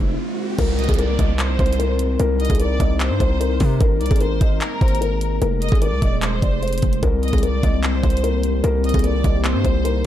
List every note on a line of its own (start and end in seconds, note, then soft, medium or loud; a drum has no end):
0.00 0.17 F1 loud
0.00 0.57 G#3 medium
0.00 0.57 C4 medium
0.00 0.57 F4 medium
0.00 0.57 C5 loud
0.00 riser medium
0.59 0.88 C2 loud
0.59 3.78 G3 medium
0.59 3.77 C4 medium
0.59 5.38 D#4 medium
0.59 0.87 A#4 loud
0.59 5.38 A#4 loud
0.59 kick loud
0.59 closed hi-hat medium
0.59 crash loud
0.59 downlifter medium
0.79 0.98 D#5 medium
0.79 closed hi-hat soft
0.84 closed hi-hat medium
0.89 1.18 C2 loud
0.89 0.98 G#4 medium
0.89 kick loud
0.89 closed hi-hat medium
0.94 closed hi-hat medium
0.99 1.17 A#4 medium
0.99 1.37 D5 medium
0.99 closed hi-hat medium
1.19 1.58 C2 loud
1.19 1.37 D#5 medium
1.19 kick loud
1.19 closed hi-hat medium
1.39 2.16 C5 medium
1.39 clap loud
1.39 closed hi-hat medium
1.59 2.17 C2 loud
1.59 1.77 C5 medium
1.59 kick loud
1.59 closed hi-hat soft
1.66 closed hi-hat medium
1.73 closed hi-hat medium
1.79 2.17 A#4 medium
1.79 closed hi-hat medium
1.99 closed hi-hat medium
2.19 2.49 C2 loud
2.19 2.48 A#4 loud
2.19 closed hi-hat medium
2.40 2.59 D#5 medium
2.40 closed hi-hat soft
2.45 closed hi-hat medium
2.50 2.79 C2 loud
2.50 2.59 G#4 medium
2.50 kick loud
2.50 closed hi-hat medium
2.55 closed hi-hat medium
2.60 2.78 A#4 medium
2.60 2.98 D5 medium
2.60 closed hi-hat medium
2.80 3.12 C2 loud
2.80 2.98 D#5 medium
2.80 kick loud
2.80 closed hi-hat medium
3.00 3.77 C5 medium
3.00 clap loud
3.00 closed hi-hat medium
3.10 3.20 G2 loud
3.20 3.59 C2 loud
3.20 3.38 C5 loud
3.20 kick loud
3.20 closed hi-hat medium
3.40 3.78 A#4 medium
3.40 closed hi-hat medium
3.60 3.80 C3 loud
3.60 kick loud
3.60 open hi-hat medium
3.80 4.02 G#1 loud
3.80 7.00 G#3 medium
3.80 5.40 A#3 medium
3.80 4.09 A#4 loud
3.80 kick loud
3.80 closed hi-hat medium
4.01 4.10 C2 loud
4.01 4.20 D5 medium
4.01 closed hi-hat soft
4.06 closed hi-hat medium
4.11 4.40 G#1 loud
4.11 4.20 G#4 medium
4.11 kick loud
4.11 closed hi-hat medium
4.16 closed hi-hat medium
4.21 4.39 A#4 medium
4.21 4.59 C5 medium
4.21 closed hi-hat medium
4.41 4.60 G#1 loud
4.41 4.59 D#5 medium
4.41 kick loud
4.41 closed hi-hat medium
4.61 5.38 A#4 loud
4.61 clap loud
4.61 closed hi-hat medium
4.81 5.39 G#1 loud
4.81 4.99 C5 medium
4.81 kick loud
4.81 closed hi-hat soft
4.88 closed hi-hat medium
4.95 closed hi-hat medium
5.01 5.39 A#4 medium
5.01 closed hi-hat medium
5.21 closed hi-hat medium
5.42 5.71 F1 loud
5.42 7.01 F3 medium
5.42 10.06 C4 medium
5.42 7.01 G#4 loud
5.42 5.70 A#4 loud
5.42 closed hi-hat medium
5.62 5.81 D#5 medium
5.62 closed hi-hat medium
5.69 5.93 G#1 loud
5.69 5.81 G#4 medium
5.69 kick loud
5.69 closed hi-hat medium
5.75 closed hi-hat soft
5.82 6.00 A#4 medium
5.82 6.20 D5 medium
5.82 closed hi-hat medium
5.92 6.02 C2 loud
6.02 6.41 D#1 loud
6.02 6.20 D#5 medium
6.02 kick loud
6.02 closed hi-hat medium
6.22 6.99 C5 medium
6.22 clap loud
6.22 closed hi-hat medium
6.42 6.81 F1 loud
6.42 6.60 D5 medium
6.42 kick loud
6.42 closed hi-hat medium
6.62 7.00 C5 medium
6.62 closed hi-hat soft
6.68 closed hi-hat medium
6.73 closed hi-hat medium
6.78 closed hi-hat medium
6.82 7.02 F1 loud
6.82 kick loud
6.82 closed hi-hat medium
6.82 open hi-hat medium
6.93 closed hi-hat medium
7.03 7.32 C2 loud
7.03 10.06 D#3 medium
7.03 10.06 A#3 medium
7.03 10.06 G4 loud
7.03 7.31 A#4 loud
7.03 kick loud
7.03 closed hi-hat medium
7.23 7.42 D#5 medium
7.23 closed hi-hat soft
7.28 closed hi-hat medium
7.33 7.62 C2 loud
7.33 7.42 G#4 medium
7.33 kick loud
7.33 closed hi-hat medium
7.38 closed hi-hat medium
7.43 7.61 A#4 medium
7.43 7.81 D5 medium
7.43 closed hi-hat medium
7.63 8.02 C2 loud
7.63 7.81 D#5 medium
7.63 kick loud
7.63 closed hi-hat medium
7.83 8.60 C5 medium
7.83 clap loud
7.83 closed hi-hat medium
8.03 8.61 C2 loud
8.03 8.21 C5 medium
8.03 kick loud
8.03 closed hi-hat soft
8.10 closed hi-hat medium
8.17 closed hi-hat medium
8.24 8.61 A#4 medium
8.24 closed hi-hat medium
8.43 closed hi-hat medium
8.64 8.93 C2 loud
8.64 8.92 A#4 loud
8.64 closed hi-hat medium
8.84 9.03 D#5 medium
8.84 closed hi-hat soft
8.89 closed hi-hat medium
8.94 9.23 C2 loud
8.94 9.03 G#4 medium
8.94 kick loud
8.94 closed hi-hat medium
8.99 closed hi-hat medium
9.04 9.22 A#4 medium
9.04 9.42 D5 medium
9.04 closed hi-hat medium
9.24 9.56 C2 loud
9.24 9.42 D#5 medium
9.24 kick loud
9.24 closed hi-hat medium
9.44 10.06 C5 loud
9.44 clap loud
9.44 closed hi-hat medium
9.55 9.64 G2 loud
9.64 10.03 C2 loud
9.64 9.82 C5 loud
9.64 kick loud
9.64 closed hi-hat medium
9.85 10.06 A#4 medium
9.85 closed hi-hat medium